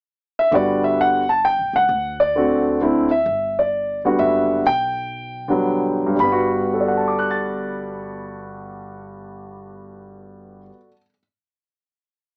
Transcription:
0, 0, Header, 1, 3, 480
1, 0, Start_track
1, 0, Key_signature, 1, "major"
1, 0, Tempo, 457317
1, 548, Time_signature, 3, 2, 24, 8
1, 3910, Tempo, 477327
1, 5350, Tempo, 516796
1, 6310, Tempo, 537634
1, 11821, End_track
2, 0, Start_track
2, 0, Title_t, "Grand piano"
2, 0, Program_c, 0, 0
2, 410, Note_on_c, 0, 76, 77
2, 536, Note_on_c, 0, 50, 56
2, 554, Note_on_c, 0, 55, 54
2, 559, Note_on_c, 0, 59, 53
2, 560, Note_on_c, 0, 66, 57
2, 565, Note_off_c, 0, 76, 0
2, 579, Note_on_c, 0, 74, 74
2, 858, Note_off_c, 0, 74, 0
2, 883, Note_on_c, 0, 76, 70
2, 1041, Note_off_c, 0, 76, 0
2, 1058, Note_on_c, 0, 78, 83
2, 1274, Note_off_c, 0, 50, 0
2, 1283, Note_off_c, 0, 55, 0
2, 1285, Note_off_c, 0, 59, 0
2, 1286, Note_off_c, 0, 66, 0
2, 1337, Note_off_c, 0, 78, 0
2, 1356, Note_on_c, 0, 81, 77
2, 1502, Note_off_c, 0, 81, 0
2, 1520, Note_on_c, 0, 79, 78
2, 1839, Note_off_c, 0, 79, 0
2, 1845, Note_on_c, 0, 78, 81
2, 2309, Note_on_c, 0, 74, 77
2, 2328, Note_off_c, 0, 78, 0
2, 2469, Note_on_c, 0, 50, 52
2, 2476, Note_on_c, 0, 57, 49
2, 2484, Note_on_c, 0, 66, 57
2, 2485, Note_on_c, 0, 60, 48
2, 2932, Note_off_c, 0, 50, 0
2, 2935, Note_off_c, 0, 57, 0
2, 2939, Note_off_c, 0, 66, 0
2, 2940, Note_off_c, 0, 60, 0
2, 2948, Note_on_c, 0, 50, 57
2, 2955, Note_on_c, 0, 57, 54
2, 2962, Note_on_c, 0, 60, 55
2, 2966, Note_on_c, 0, 64, 63
2, 3225, Note_off_c, 0, 74, 0
2, 3233, Note_off_c, 0, 50, 0
2, 3236, Note_off_c, 0, 57, 0
2, 3240, Note_off_c, 0, 60, 0
2, 3241, Note_off_c, 0, 64, 0
2, 3266, Note_on_c, 0, 76, 77
2, 3761, Note_off_c, 0, 76, 0
2, 3767, Note_on_c, 0, 74, 61
2, 4197, Note_off_c, 0, 74, 0
2, 4235, Note_on_c, 0, 50, 60
2, 4236, Note_on_c, 0, 55, 52
2, 4242, Note_on_c, 0, 59, 57
2, 4250, Note_on_c, 0, 66, 64
2, 4380, Note_on_c, 0, 76, 75
2, 4825, Note_off_c, 0, 76, 0
2, 4834, Note_off_c, 0, 50, 0
2, 4834, Note_off_c, 0, 55, 0
2, 4837, Note_off_c, 0, 59, 0
2, 4841, Note_off_c, 0, 66, 0
2, 4855, Note_on_c, 0, 79, 89
2, 5650, Note_on_c, 0, 50, 56
2, 5664, Note_on_c, 0, 55, 49
2, 5666, Note_on_c, 0, 59, 50
2, 5675, Note_on_c, 0, 54, 60
2, 6103, Note_off_c, 0, 79, 0
2, 6193, Note_on_c, 0, 43, 60
2, 6258, Note_off_c, 0, 55, 0
2, 6272, Note_on_c, 0, 55, 51
2, 6273, Note_off_c, 0, 50, 0
2, 6281, Note_off_c, 0, 59, 0
2, 6285, Note_off_c, 0, 54, 0
2, 6317, Note_on_c, 0, 83, 67
2, 6349, Note_on_c, 0, 59, 52
2, 6426, Note_on_c, 0, 66, 65
2, 6795, Note_on_c, 0, 69, 39
2, 6857, Note_on_c, 0, 74, 39
2, 6928, Note_on_c, 0, 78, 38
2, 7007, Note_on_c, 0, 81, 35
2, 7101, Note_on_c, 0, 86, 34
2, 7199, Note_on_c, 0, 90, 33
2, 7306, Note_on_c, 0, 93, 31
2, 10248, Note_off_c, 0, 43, 0
2, 10324, Note_off_c, 0, 55, 0
2, 10333, Note_off_c, 0, 83, 0
2, 10400, Note_off_c, 0, 59, 0
2, 10477, Note_off_c, 0, 66, 0
2, 10498, Note_off_c, 0, 69, 0
2, 10529, Note_off_c, 0, 74, 0
2, 10565, Note_off_c, 0, 78, 0
2, 10604, Note_off_c, 0, 81, 0
2, 10652, Note_off_c, 0, 86, 0
2, 10701, Note_off_c, 0, 90, 0
2, 10754, Note_off_c, 0, 93, 0
2, 11821, End_track
3, 0, Start_track
3, 0, Title_t, "Upright bass"
3, 0, Program_c, 1, 32
3, 545, Note_on_c, 1, 31, 78
3, 1623, Note_off_c, 1, 31, 0
3, 1664, Note_on_c, 1, 35, 46
3, 1814, Note_off_c, 1, 35, 0
3, 1819, Note_on_c, 1, 37, 57
3, 1971, Note_off_c, 1, 37, 0
3, 1981, Note_on_c, 1, 38, 81
3, 3383, Note_off_c, 1, 38, 0
3, 3419, Note_on_c, 1, 31, 75
3, 4335, Note_off_c, 1, 31, 0
3, 4374, Note_on_c, 1, 30, 72
3, 4822, Note_off_c, 1, 30, 0
3, 4846, Note_on_c, 1, 35, 75
3, 6268, Note_off_c, 1, 35, 0
3, 6310, Note_on_c, 1, 31, 83
3, 10325, Note_off_c, 1, 31, 0
3, 11821, End_track
0, 0, End_of_file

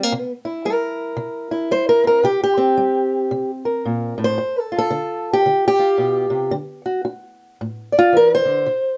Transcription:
0, 0, Header, 1, 2, 480
1, 0, Start_track
1, 0, Tempo, 535714
1, 99, Time_signature, 4, 2, 24, 8
1, 8040, End_track
2, 0, Start_track
2, 0, Title_t, "Steel-string acoustic guitar"
2, 0, Program_c, 0, 25
2, 0, Note_on_c, 0, 60, 93
2, 29, Note_on_c, 0, 58, 44
2, 111, Note_off_c, 0, 58, 0
2, 111, Note_on_c, 0, 48, 78
2, 281, Note_off_c, 0, 60, 0
2, 403, Note_on_c, 0, 64, 50
2, 547, Note_off_c, 0, 48, 0
2, 585, Note_on_c, 0, 55, 64
2, 589, Note_on_c, 0, 70, 89
2, 1023, Note_off_c, 0, 55, 0
2, 1045, Note_on_c, 0, 48, 72
2, 1345, Note_off_c, 0, 64, 0
2, 1356, Note_on_c, 0, 64, 49
2, 1492, Note_off_c, 0, 48, 0
2, 1534, Note_on_c, 0, 55, 65
2, 1536, Note_off_c, 0, 70, 0
2, 1539, Note_on_c, 0, 72, 94
2, 1689, Note_off_c, 0, 72, 0
2, 1693, Note_on_c, 0, 70, 93
2, 1824, Note_on_c, 0, 60, 46
2, 1847, Note_off_c, 0, 70, 0
2, 1857, Note_on_c, 0, 70, 85
2, 1977, Note_off_c, 0, 55, 0
2, 1992, Note_off_c, 0, 60, 0
2, 1997, Note_off_c, 0, 64, 0
2, 2003, Note_on_c, 0, 48, 81
2, 2013, Note_on_c, 0, 67, 96
2, 2017, Note_off_c, 0, 70, 0
2, 2171, Note_off_c, 0, 67, 0
2, 2182, Note_on_c, 0, 67, 100
2, 2307, Note_on_c, 0, 60, 52
2, 2451, Note_off_c, 0, 48, 0
2, 2486, Note_on_c, 0, 55, 66
2, 2932, Note_off_c, 0, 55, 0
2, 2967, Note_on_c, 0, 48, 63
2, 3138, Note_off_c, 0, 67, 0
2, 3273, Note_on_c, 0, 70, 46
2, 3413, Note_off_c, 0, 48, 0
2, 3453, Note_on_c, 0, 46, 57
2, 3740, Note_off_c, 0, 46, 0
2, 3743, Note_on_c, 0, 45, 56
2, 3778, Note_off_c, 0, 70, 0
2, 3801, Note_on_c, 0, 72, 98
2, 3912, Note_off_c, 0, 60, 0
2, 3923, Note_on_c, 0, 43, 72
2, 3933, Note_off_c, 0, 45, 0
2, 4118, Note_off_c, 0, 72, 0
2, 4118, Note_on_c, 0, 69, 105
2, 4228, Note_on_c, 0, 65, 46
2, 4266, Note_off_c, 0, 69, 0
2, 4287, Note_on_c, 0, 69, 107
2, 4371, Note_off_c, 0, 43, 0
2, 4395, Note_on_c, 0, 50, 68
2, 4751, Note_off_c, 0, 69, 0
2, 4780, Note_on_c, 0, 67, 100
2, 4847, Note_off_c, 0, 50, 0
2, 4891, Note_on_c, 0, 50, 69
2, 5077, Note_off_c, 0, 67, 0
2, 5086, Note_on_c, 0, 67, 110
2, 5179, Note_off_c, 0, 65, 0
2, 5189, Note_on_c, 0, 65, 50
2, 5335, Note_off_c, 0, 50, 0
2, 5358, Note_on_c, 0, 47, 59
2, 5643, Note_off_c, 0, 47, 0
2, 5646, Note_on_c, 0, 48, 51
2, 5834, Note_off_c, 0, 65, 0
2, 5836, Note_on_c, 0, 50, 80
2, 5845, Note_off_c, 0, 48, 0
2, 5871, Note_off_c, 0, 67, 0
2, 6144, Note_on_c, 0, 66, 49
2, 6288, Note_off_c, 0, 50, 0
2, 6304, Note_off_c, 0, 66, 0
2, 6315, Note_on_c, 0, 66, 65
2, 6768, Note_off_c, 0, 66, 0
2, 6819, Note_on_c, 0, 45, 66
2, 7100, Note_on_c, 0, 74, 49
2, 7156, Note_on_c, 0, 65, 111
2, 7260, Note_off_c, 0, 45, 0
2, 7282, Note_on_c, 0, 52, 59
2, 7306, Note_off_c, 0, 65, 0
2, 7317, Note_on_c, 0, 70, 97
2, 7467, Note_off_c, 0, 70, 0
2, 7478, Note_on_c, 0, 72, 116
2, 7570, Note_off_c, 0, 52, 0
2, 7573, Note_on_c, 0, 50, 52
2, 7751, Note_off_c, 0, 74, 0
2, 7763, Note_on_c, 0, 48, 76
2, 7770, Note_off_c, 0, 50, 0
2, 8040, Note_off_c, 0, 48, 0
2, 8040, Note_off_c, 0, 72, 0
2, 8040, End_track
0, 0, End_of_file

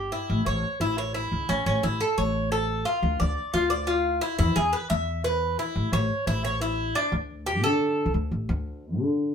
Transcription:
0, 0, Header, 1, 3, 480
1, 0, Start_track
1, 0, Key_signature, -1, "minor"
1, 0, Tempo, 341491
1, 412, Time_signature, 4, 2, 24, 8
1, 13138, End_track
2, 0, Start_track
2, 0, Title_t, "Cuban tres"
2, 0, Program_c, 0, 25
2, 0, Note_on_c, 0, 67, 74
2, 155, Note_off_c, 0, 67, 0
2, 170, Note_on_c, 0, 64, 69
2, 637, Note_off_c, 0, 64, 0
2, 652, Note_on_c, 0, 73, 70
2, 1118, Note_off_c, 0, 73, 0
2, 1136, Note_on_c, 0, 64, 76
2, 1367, Note_off_c, 0, 64, 0
2, 1380, Note_on_c, 0, 73, 68
2, 1604, Note_off_c, 0, 73, 0
2, 1609, Note_on_c, 0, 64, 72
2, 2077, Note_off_c, 0, 64, 0
2, 2094, Note_on_c, 0, 61, 79
2, 2322, Note_off_c, 0, 61, 0
2, 2339, Note_on_c, 0, 61, 75
2, 2569, Note_off_c, 0, 61, 0
2, 2578, Note_on_c, 0, 64, 76
2, 2808, Note_off_c, 0, 64, 0
2, 2820, Note_on_c, 0, 69, 70
2, 3049, Note_off_c, 0, 69, 0
2, 3061, Note_on_c, 0, 73, 75
2, 3523, Note_off_c, 0, 73, 0
2, 3539, Note_on_c, 0, 69, 71
2, 4002, Note_off_c, 0, 69, 0
2, 4010, Note_on_c, 0, 65, 72
2, 4478, Note_off_c, 0, 65, 0
2, 4493, Note_on_c, 0, 74, 70
2, 4959, Note_off_c, 0, 74, 0
2, 4971, Note_on_c, 0, 65, 79
2, 5201, Note_on_c, 0, 74, 69
2, 5205, Note_off_c, 0, 65, 0
2, 5440, Note_off_c, 0, 74, 0
2, 5441, Note_on_c, 0, 65, 77
2, 5913, Note_off_c, 0, 65, 0
2, 5924, Note_on_c, 0, 64, 85
2, 6148, Note_off_c, 0, 64, 0
2, 6164, Note_on_c, 0, 64, 81
2, 6402, Note_off_c, 0, 64, 0
2, 6406, Note_on_c, 0, 68, 81
2, 6642, Note_off_c, 0, 68, 0
2, 6646, Note_on_c, 0, 71, 72
2, 6879, Note_off_c, 0, 71, 0
2, 6884, Note_on_c, 0, 76, 83
2, 7354, Note_off_c, 0, 76, 0
2, 7370, Note_on_c, 0, 71, 77
2, 7837, Note_off_c, 0, 71, 0
2, 7858, Note_on_c, 0, 64, 72
2, 8321, Note_off_c, 0, 64, 0
2, 8336, Note_on_c, 0, 73, 81
2, 8800, Note_off_c, 0, 73, 0
2, 8818, Note_on_c, 0, 64, 80
2, 9048, Note_off_c, 0, 64, 0
2, 9059, Note_on_c, 0, 73, 78
2, 9289, Note_off_c, 0, 73, 0
2, 9297, Note_on_c, 0, 64, 78
2, 9761, Note_off_c, 0, 64, 0
2, 9774, Note_on_c, 0, 62, 86
2, 10006, Note_off_c, 0, 62, 0
2, 10492, Note_on_c, 0, 67, 78
2, 10726, Note_off_c, 0, 67, 0
2, 10733, Note_on_c, 0, 69, 78
2, 11404, Note_off_c, 0, 69, 0
2, 13138, End_track
3, 0, Start_track
3, 0, Title_t, "Upright bass"
3, 0, Program_c, 1, 32
3, 417, Note_on_c, 1, 33, 99
3, 643, Note_off_c, 1, 33, 0
3, 650, Note_on_c, 1, 33, 88
3, 879, Note_off_c, 1, 33, 0
3, 1129, Note_on_c, 1, 33, 83
3, 1815, Note_off_c, 1, 33, 0
3, 1852, Note_on_c, 1, 37, 82
3, 2068, Note_off_c, 1, 37, 0
3, 2093, Note_on_c, 1, 33, 75
3, 2309, Note_off_c, 1, 33, 0
3, 2338, Note_on_c, 1, 33, 89
3, 2564, Note_off_c, 1, 33, 0
3, 2583, Note_on_c, 1, 33, 84
3, 2806, Note_off_c, 1, 33, 0
3, 3063, Note_on_c, 1, 33, 89
3, 3970, Note_off_c, 1, 33, 0
3, 4253, Note_on_c, 1, 38, 94
3, 4481, Note_off_c, 1, 38, 0
3, 4507, Note_on_c, 1, 38, 92
3, 4729, Note_off_c, 1, 38, 0
3, 4973, Note_on_c, 1, 38, 80
3, 5885, Note_off_c, 1, 38, 0
3, 6170, Note_on_c, 1, 40, 97
3, 6400, Note_off_c, 1, 40, 0
3, 6411, Note_on_c, 1, 40, 97
3, 6640, Note_off_c, 1, 40, 0
3, 6895, Note_on_c, 1, 40, 85
3, 7806, Note_off_c, 1, 40, 0
3, 8091, Note_on_c, 1, 33, 97
3, 8320, Note_off_c, 1, 33, 0
3, 8327, Note_on_c, 1, 33, 89
3, 8558, Note_off_c, 1, 33, 0
3, 8815, Note_on_c, 1, 33, 86
3, 9726, Note_off_c, 1, 33, 0
3, 10008, Note_on_c, 1, 38, 97
3, 10728, Note_off_c, 1, 38, 0
3, 10728, Note_on_c, 1, 50, 78
3, 11301, Note_off_c, 1, 50, 0
3, 11325, Note_on_c, 1, 36, 79
3, 11435, Note_off_c, 1, 36, 0
3, 11443, Note_on_c, 1, 38, 85
3, 11677, Note_off_c, 1, 38, 0
3, 11688, Note_on_c, 1, 33, 78
3, 11919, Note_off_c, 1, 33, 0
3, 11933, Note_on_c, 1, 38, 102
3, 12650, Note_off_c, 1, 38, 0
3, 12650, Note_on_c, 1, 50, 80
3, 13138, Note_off_c, 1, 50, 0
3, 13138, End_track
0, 0, End_of_file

